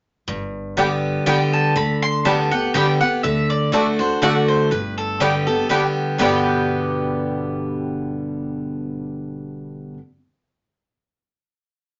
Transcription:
0.28 G1 G2
0.77 D3 G3 B3 D4 G4 D5 G5
1.26 D3 G3 B3 D4 G4 D5 G5
1.53 A5
1.76 D2 D3 B5
2.02 C6
2.25 D3 G3 B3 D4 G4 D5 G5 A5
2.51 B3 G4 F#5
2.74 D3 G3 B3 D4 G4 D5 G5
3.01 B3 G4 F#5
3.23 D2 D3 E5
3.50 D5
3.72 D3 A3 D4 F#4 B4 D5 F#5
3.99 D4 F#4 C5
4.22 D3 A3 D4 F#4 D5 F#5
4.48 C5
4.71 G1 G2 B4
4.98 A4
5.20 D3 G3 B3 D4 G4 D5 G5
5.47 B3 G4 A4
5.69 D3 G3 B3 D4 G4 B4 D5 G5
6.18 G1 G2 B2 D3 G3 B3 G4 B4 D5 G5
6.23 D4 G4

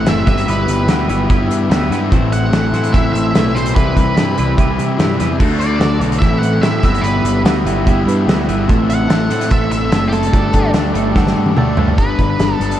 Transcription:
Already playing: A4 E5 C6 E6
0.05 F#1 A2 E3 A3 C4 E4 C5 E5, snare, closed hi-hat
0.25 G1 G3 B3 E4 F#4 G4 B4 E5 F#5 B5, kick, closed hi-hat
0.38 closed hi-hat
0.46 G1 G3 B3 E4 G4 B4, closed hi-hat
0.68 G1, closed hi-hat
0.87 D2 G3 B3 E4 F#4 G4 B4, snare, closed hi-hat
1.08 G1 G3 B3 E4 F#4 G4 B4, closed hi-hat
1.29 G1 G3 B3 E4 G4 B4, kick, closed hi-hat
1.49 G2, closed hi-hat
1.70 D2 G3 B3 E4 F#4 G4 B4, snare, closed hi-hat
1.90 G2 G3 B3 E4 F#4 G4 B4, snare, closed hi-hat
2.10 A1 A2 E3 A3 C4 E4 A4 C5 E5 C6, kick, closed hi-hat
2.32 F#5, closed hi-hat
2.52 A1 A2 E3 A3 C4 E4 C5, snare, closed hi-hat
2.72 A2 E3 A3 C4 E4 C5, closed hi-hat
2.84 closed hi-hat
2.93 A1 A2 E3 A3 C4 E4 C5 E5, kick, closed hi-hat
3.13 A1 E5, closed hi-hat
3.34 B1 A2 E3 A3 C4 E4 C5, snare, closed hi-hat
3.54 A2 E3 A3 C4 E4 C5, snare, closed hi-hat
3.66 closed hi-hat
3.74 C2 C3 E3 G3 C4 E4 G4 B4 B5, kick, closed hi-hat
3.97 C2, kick, closed hi-hat
4.15 G2 C3 E3 G3 C4 E4 B4, snare, closed hi-hat
4.36 C2 C3 E3 G3 C4 E4 B4, closed hi-hat
4.57 C2 C3 E3 G3 C4 E4 B4, kick, closed hi-hat
4.79 C3, closed hi-hat
4.98 G2 C3 E3 G3 C4 E4 B4, snare, closed hi-hat
5.18 E2 C3 E3 G3 C4 E4 B4, snare, closed hi-hat
5.39 D2 D3 A3 D4 F#4 A4 D5 F#5 D6, kick, crash
5.59 D5, closed hi-hat
5.80 D2 D3 A3 D4 F#4 A4, snare, closed hi-hat
6.00 B1 D3 A3 D4 F#4 A4, closed hi-hat
6.12 closed hi-hat
6.19 A1 A2 E3 A3 E5 C6 E6, kick, closed hi-hat
6.23 C4 E4
6.39 A1 F#5
6.43 closed hi-hat
6.61 A2 E3 A3 E5, snare, closed hi-hat
6.65 C4 E4
6.80 G1 G3 G4 E5 F#5, kick, closed hi-hat
6.84 B3 E4 F#4 G4 B5
6.94 closed hi-hat
7.01 G1 G3 B3 E4 G4 B4, closed hi-hat
7.23 G1, closed hi-hat
7.44 D2 G3 B3 E4 F#4 G4 F#5, snare, closed hi-hat
7.65 G1 G3 B3 E4 F#4 G4 E5, closed hi-hat
7.86 G1 G3 B3 E4 G4 E5, kick, closed hi-hat
8.06 G2 B4, closed hi-hat
8.27 D2 G3 B3 E4 F#4 G4, snare, closed hi-hat
8.48 G1 G3 B3 E4 F#4 G4, closed hi-hat
8.68 A1 A3 C4 E4 A4 E5 C6, kick, closed hi-hat
8.90 F#5, closed hi-hat
9.08 A1 A3 C4 E4 A4, snare, closed hi-hat
9.30 A2 A3 C4 E4 A4, closed hi-hat
9.41 closed hi-hat
9.51 A1 A3 C4 E4 A4 E5, kick, closed hi-hat
9.71 A1 E5, closed hi-hat
9.91 F#1 A3 C4 E4 A4, snare, closed hi-hat
10.08 G4
10.12 A3 C4 E4 A4, closed hi-hat
10.23 closed hi-hat
10.32 G1 G3 A3 D4 A4 D5 G5 D6, kick, closed hi-hat
10.53 G1 G5, kick, closed hi-hat
10.73 D2 G3 A3 D4 A4 D5, snare, closed hi-hat
10.93 G1 G3 A3 D4 A4 E5, closed hi-hat
11.15 G1 G3 A3 D4 A4 F#5, kick, snare
11.27 snare
11.36 G2 G5
11.46 high tom
11.56 D2 G3 A3 D4 A4 A5, mid tom
11.77 G2 G3 A3 D4 A4, floor tom
11.88 floor tom
11.97 G1 G2 D3 G3 B3 D4 B4, kick, closed hi-hat
12.19 G1, kick, closed hi-hat
12.38 G1 D3 G3 B3 D4, snare, closed hi-hat
12.55 D4 A4
12.60 G1 G3 B3, closed hi-hat
12.71 closed hi-hat

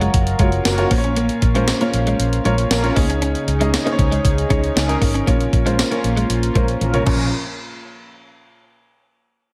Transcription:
Already playing: F#3 C#4 F4 F#4 A#4 C#5 D#5 F5
0.01 G#3, closed hi-hat
0.14 F#1, kick, closed hi-hat
0.27 closed hi-hat
0.39 F#1 G#3 A#3 F4 F#4 A#4 C#5, kick, closed hi-hat
0.52 closed hi-hat
0.65 F#1 A#3 F#4 A#4, muted clean electric guitar stroke, snare, closed hi-hat, tambourine
0.78 F4 F#4 A#4 C#5, closed hi-hat
0.91 A#1 A#2 A#3 C#4 F4 A#4 C5, kick, open hi-hat
0.98 C#5
1.04 C#4, closed hi-hat
1.16 A#3, closed hi-hat
1.29 closed hi-hat
1.42 A#1, muted clean electric guitar stroke, kick, closed hi-hat
1.54 G#3 C#4 F4 A#4 C5, closed hi-hat
1.68 snare, closed hi-hat, tambourine
1.80 A#3 C#4 F4 A#4 C#5, closed hi-hat
1.93 A#1, muted clean electric guitar stroke, closed hi-hat
2.07 G#3, closed hi-hat
2.19 A#1, closed hi-hat
2.33 closed hi-hat
2.44 A#1 G#3 C#4 F4 A#4 C#5, closed hi-hat
2.58 closed hi-hat
2.70 A#1 C#4 F4 A#4, muted clean electric guitar stroke, snare, closed hi-hat, tambourine
2.83 C#4 F4 A#4 C#5, closed hi-hat
2.96 C#2 C#3 A#3 C#4 D#4 G#4 C#5, kick, open hi-hat
3.09 C#4, closed hi-hat
3.22 C#4, closed hi-hat
3.35 closed hi-hat
3.47 C#2, muted clean electric guitar stroke, closed hi-hat
3.60 G#3 C#4 D#4 G#4 D#5, closed hi-hat
3.74 snare, closed hi-hat, tambourine
3.85 A#3 C#4 D#4 G#4 C5, closed hi-hat
3.92 C#5
3.99 C#2, muted clean electric guitar stroke, kick, closed hi-hat
4.12 G#3, closed hi-hat
4.25 C#2, kick, closed hi-hat
4.38 closed hi-hat
4.49 C#2 G#3 C#4 D#4 G#4 C#5, kick, closed hi-hat
4.64 closed hi-hat
4.76 C#2 C#4 D#4 G#4, muted clean electric guitar stroke, snare, closed hi-hat, tambourine
4.88 C#4 D#4 G#4 A#4, closed hi-hat
5.01 G#1 A#3, kick, open hi-hat
5.14 C#4, closed hi-hat
5.27 A#1 A#2 A#3 C#4 F4 A#4 C#5, kick, closed hi-hat
5.41 closed hi-hat
5.53 A#1, muted clean electric guitar stroke, kick, closed hi-hat
5.65 G#3 C#4 F4 A#4 C5, closed hi-hat
5.79 snare, closed hi-hat, tambourine
5.91 A#3 C#4 F4 A#4 C#5, closed hi-hat
6.04 A#1, muted clean electric guitar stroke, closed hi-hat
6.17 G#3, closed hi-hat
6.30 A#1, closed hi-hat
6.43 closed hi-hat
6.55 A#1 G#3 C#4 F4 A#4 C5, kick, closed hi-hat
6.68 closed hi-hat
6.81 A#1 C#4 F4 A#4, muted clean electric guitar stroke, closed hi-hat, high tom
6.93 C#4 F4 A#4 C#5, closed hi-hat, mid tom
7.06 A#1 A#2 F3 A#3 C#4 F4 A#4 C#5, kick, crash

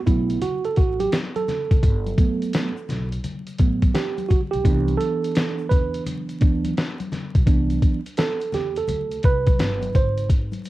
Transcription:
0.06 B1 F#3 A3 B3 E4, kick, closed hi-hat, low conga, shaker
0.29 closed hi-hat, shaker
0.42 F#4, closed hi-hat, high conga, low conga, shaker
0.64 A4, closed hi-hat, shaker
0.76 A1 F#4, kick, closed hi-hat, shaker
1.00 G4, closed hi-hat, high conga, shaker
1.12 snare, closed hi-hat, shaker
1.36 A4, closed hi-hat, high conga, shaker
1.48 snare, closed hi-hat, low conga, shaker
1.71 F#1, kick, closed hi-hat, shaker
1.83 G1, kick, closed hi-hat, shaker
2.07 closed hi-hat, high conga, shaker
2.18 F#3 A3 B3, kick, closed hi-hat, shaker
2.42 closed hi-hat, shaker
2.53 snare, closed hi-hat, shaker
2.77 shaker
2.89 B1, snare, closed hi-hat, low conga, shaker
3.12 closed hi-hat, shaker
3.24 closed hi-hat, high conga, low conga, shaker
3.47 closed hi-hat, shaker
3.59 A1 F#3 A3 B3, kick, closed hi-hat, shaker
3.82 kick, closed hi-hat, high conga, shaker
3.94 G4, snare, closed hi-hat, shaker
4.18 closed hi-hat, high conga, shaker
4.29 F#4, kick, closed hi-hat, low conga, shaker
4.51 B1 G4, closed hi-hat, shaker
4.64 C2 E3 B3 D4, kick, closed hi-hat, shaker
4.88 closed hi-hat, high conga, shaker
4.97 A4, closed hi-hat, shaker
5.24 closed hi-hat, shaker
5.35 snare, closed hi-hat, shaker
5.58 shaker
5.69 E2 B4, kick, closed hi-hat, low conga, shaker
5.94 closed hi-hat, shaker
6.06 closed hi-hat, high conga, low conga, shaker
6.29 closed hi-hat, shaker
6.40 D2 E3 B3 D4, kick, closed hi-hat, shaker
6.64 closed hi-hat, high conga, shaker
6.77 snare, closed hi-hat, shaker
7.00 closed hi-hat, high conga, shaker
7.12 snare, closed hi-hat, low conga, shaker
7.35 B1, kick, closed hi-hat, shaker
7.47 C2 E3 B3 D4, kick, closed hi-hat, shaker
7.70 closed hi-hat, high conga, shaker
7.82 kick, closed hi-hat, shaker
8.06 closed hi-hat, shaker
8.17 A4, snare, closed hi-hat, shaker
8.40 closed hi-hat, shaker
8.52 E2 G4, snare, closed hi-hat, low conga, shaker
8.76 A4, closed hi-hat, shaker
8.88 D2, closed hi-hat, high conga, low conga, shaker
9.11 closed hi-hat, shaker
9.23 C2 B4, kick, closed hi-hat, shaker
9.47 kick, closed hi-hat, high conga, shaker
9.59 G1, snare, closed hi-hat, shaker
9.82 closed hi-hat, high conga, shaker
9.95 G#1 C5, kick, closed hi-hat, low conga, shaker
10.18 closed hi-hat, shaker
10.30 kick, closed hi-hat, shaker
10.52 closed hi-hat, high conga, shaker
10.64 closed hi-hat, shaker

